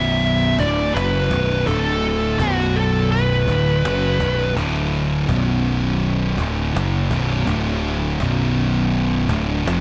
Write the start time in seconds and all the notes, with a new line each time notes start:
Already playing: B0 B1 F#2 B2 E5
0.22 cajon slap
0.58 D1 D2 A2 D3 D5, cajon bass
0.94 F#1 F#2 C#3 F#3 B4, cajon slap
1.31 B0 B1 F#2 B2, cajon bass
1.67 D1 D2 A2 D3 A4, cajon bass
2.03 cajon slap
2.39 B0 B1 F#2 B2 F#4, cajon bass
2.75 A4, cajon slap
3.12 B4, cajon slap
3.47 D1 D2 A2 D3, cajon bass
3.68 cajon slap
3.84 F#1 F#2 C#3 F#3, cajon slap
4.19 B0 B1 F#2 B2, cajon bass
4.55 D1 D2 A2 D3, cajon bass
4.93 cajon slap
5.27 B0 B1 F#2 B2, cajon bass
5.65 cajon slap
6.02 cajon slap
6.37 D1 D2 A2 D3, cajon bass
6.74 F#1 F#2 C#3 F#3, cajon slap
7.10 B0 B1 F#2 B2, cajon bass
7.46 D1 D2 A2 D3, cajon bass
7.84 cajon slap
8.20 B0 B1 F#2 B2, cajon bass
8.57 cajon slap
8.93 cajon slap
9.29 D1 D2 A2 D3, cajon bass
9.65 F1 F2 C3 F3, cajon slap